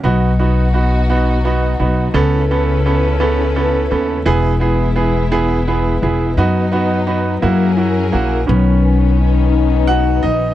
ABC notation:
X:1
M:6/8
L:1/8
Q:3/8=57
K:B
V:1 name="Upright piano"
[B,DF] [B,DF] [B,DF] [B,DF] [B,DF] [B,DF] | [B,C=A] [B,CA] [B,CA] [B,CA] [B,CA] [B,CA] | [B,EG] [B,EG] [B,EG] [B,EG] [B,EG] [B,EG] | [B,DF] [B,DF] [B,DF] [A,EF] [EF] [A,EF] |
z4 [Ff] [Dd] |]
V:2 name="Upright piano"
z6 | z6 | z6 | z6 |
[D,B,C]6 |]
V:3 name="French horn section"
z6 | z6 | z6 | z6 |
C2 D4 |]
V:4 name="String section"
[B,DF]6 | [C,CE=AB]6 | [G,B,E]6 | [F,B,D]3 [F,CEGA]3 |
[D,B,C]6 |]
V:5 name="Upright bass" clef=bass
B,,,4- B,,, B,,, | C,,4- C,, D,, | E,,,4- E,,, E,,, | F,,3 F,,2 A,,, |
B,,,4- B,,, A,,, |]